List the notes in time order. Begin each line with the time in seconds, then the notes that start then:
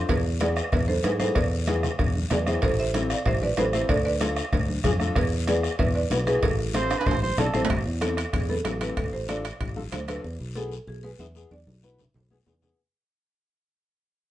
0.09 E2 G#4 B4, bombo low, bombo rim, cowbell, long guiro
0.40 B3 E4 G#4 B4 D5, bombo rim, cowbell, high conga, short guiro
0.56 bombo rim, short guiro
0.72 E2 B4 E5, bombo low, bombo rim, cowbell, high conga, long guiro
0.88 A4 C5, high conga
1.04 G#2 B3 E4 G#4 B4, bombo rim, cowbell, high conga, short guiro
1.20 B3 E4 G#4 A4 C5, bombo rim, high conga, short guiro
1.35 E2 B4 D5, bombo low, bombo rim, cowbell, high conga, long guiro
1.67 B3 E4 G#4, bombo rim, cowbell, high conga, short guiro
1.83 bombo rim, low conga, short guiro
1.99 E2, bombo low, bombo rim, cowbell, high conga, long guiro
2.16 high conga
2.30 E2 B3 E4 G#4 B4 D5, bombo rim, cowbell, high conga, low conga, low timbale, short guiro
2.46 B3 E4 G#4 C5 E5, bombo rim, high conga, short guiro
2.62 A1 A4 C5, bombo low, bombo rim, cowbell, long guiro
2.80 C5 E5
2.94 C4 E4 A4, bombo rim, cowbell, high conga, short guiro
3.10 D5 F5, bombo rim, short guiro
3.26 A1 C5 E5, bombo low, bombo rim, cowbell, high conga, long guiro
3.41 B4 D5, high conga
3.57 A1 C4 E4 A4 B4 C5, bombo rim, cowbell, high conga, low timbale, short guiro
3.73 C4 E4 A4 C5 E5, bombo rim, short guiro
3.89 D2 A4 D5, bombo low, bombo rim, cowbell, high conga, long guiro
4.05 B4 D5
4.21 D4 F4 A4, bombo rim, cowbell, high conga, short guiro
4.36 bombo rim, short guiro
4.52 D2, bombo low, bombo rim, cowbell, high conga, long guiro
4.68 high conga
4.83 F2 D4 F4 G#4, bombo low, bombo rim, cowbell, high conga, low conga, short guiro
5.00 D4 F4 A4, bombo rim, high conga, short guiro
5.15 E2 G#4 B4, bombo low, bombo rim, cowbell, high conga, long guiro
5.47 B3 E4 G#4 B4 D5, bombo rim, cowbell, high conga, short guiro
5.63 bombo rim, short guiro
5.79 E2 B4 E5, bombo low, bombo rim, cowbell, high conga, long guiro
5.95 B4 D5
6.10 B1 B3 E4 B4, bombo rim, cowbell, high conga, short guiro
6.27 B3 E4 G#4 B4, bombo rim, high conga, short guiro
6.43 A1 E4 A4, bombo low, bombo rim, cowbell, high conga, long guiro
6.74 C4 E4 A4 C5, bombo rim, cowbell, high conga, short guiro
6.90 bombo rim, high timbale, short guiro
6.99 B4, high timbale
7.06 A1 C5, bombo low, bombo rim, cowbell, high conga, long guiro
7.11 high timbale
7.22 C5, high conga
7.37 B1 C4 E4 A4 D5, bombo rim, cowbell, high conga, low conga, short guiro
7.54 A1 C4 E4 A4 C5, bombo rim, high conga, short guiro
7.65 low timbale
7.70 A1, bombo low, bombo rim, high conga, high timbale, long guiro
7.86 E2
8.01 C4 E4 A4, bombo rim, high conga, high timbale, short guiro
8.17 bombo rim, high timbale, short guiro
8.33 E2 G#4, bombo low, bombo rim, high conga, high timbale, long guiro
8.49 C4 E4 A4 B4, high conga
8.65 A1 C4 E4 A4, bombo rim, high conga, high timbale, low timbale, short guiro
8.80 C4 E4 A4 B4, bombo rim, high conga, high timbale, short guiro
8.97 D2 A4, bombo low, bombo rim, high timbale, long guiro
9.12 A1 C5
9.28 D4 F4 A4 D5, bombo rim, high conga, high timbale, short guiro
9.45 bombo rim, high timbale, short guiro
9.60 A1, bombo low, bombo rim, high conga, high timbale, long guiro
9.76 D4 F4 A4, high conga
9.92 D2 D4 F4 A4 C5, bombo rim, high conga, high timbale, low timbale, short guiro
10.08 D4 F4 A4 B4, bombo rim, high conga, high timbale, short guiro
10.24 E2, long guiro
10.40 B1
10.55 B3 E4 G#4 A4, high conga, short guiro
10.72 short guiro
10.87 B1 G#4, high conga, long guiro
11.03 B3 E4 G#4 B4
11.19 E2 B3 E4 G#4 E5, high conga, short guiro
11.35 B3 E4 G#4, short guiro
11.51 E2 D5, high conga, long guiro
11.67 B1, high conga
11.83 B3 E4 B4, high conga, short guiro
11.99 low conga, short guiro
12.14 B1, low conga, long guiro
12.30 B3 E4 G#4, low conga
12.46 E2 B3 E4 G#4, low conga, short guiro
12.62 B3 E4 G#4, low conga, short guiro